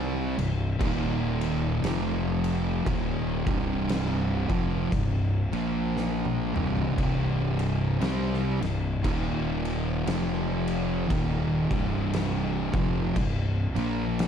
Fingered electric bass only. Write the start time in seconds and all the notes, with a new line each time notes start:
Already playing: C2
0.38 C1
0.81 D#1
1.83 F1
2.87 D#1
3.47 C1
4.50 F1
4.93 C1
5.53 A#1
6.56 C1
6.99 C1
8.01 C2
8.62 C1
9.05 D#1
10.07 F1
11.10 D#1
11.71 C1
12.74 F1
13.16 C1
13.76 A#1